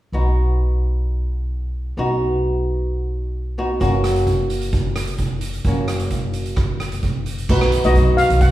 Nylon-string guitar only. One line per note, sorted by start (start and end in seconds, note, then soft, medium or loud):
0.13 1.94 B3 medium
0.13 1.94 D#4 soft
0.13 1.94 F#4 soft
1.97 3.55 B3 medium
1.97 3.56 D#4 soft
1.97 3.56 F#4 medium
3.58 3.80 B3 soft
3.58 3.80 D#4 soft
3.58 3.80 F#4 medium
3.80 5.61 A#3 medium
3.80 5.61 C#4 medium
3.80 5.62 F#4 medium
5.66 7.46 A#3 medium
5.66 7.46 C#4 soft
5.66 7.46 F#4 medium
7.49 7.70 B3 medium
7.49 7.70 D#4 medium
7.49 7.70 F#4 medium
7.85 8.39 B3 medium
7.85 8.39 D#4 medium
7.85 8.40 F#4 medium